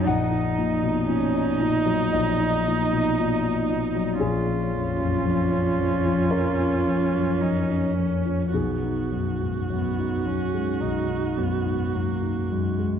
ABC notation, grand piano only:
X:1
M:4/4
L:1/16
Q:1/4=56
K:F#
V:1 name="Grand piano"
f8 d4 z4 | G8 A8 | G12 z4 |]
V:2 name="Grand piano" clef=bass
A,,, D A,, B,, A,, D A,, F, A,,, D A,, B,, A,, D A,, F, | A,,, C E,, F,, E,, C E,, E, E,, C E,, F,, E,, C E,, E, | B,,, D F,, G,, F,, D F,, G, B,,, D F,, G,, F,, D F,, G, |]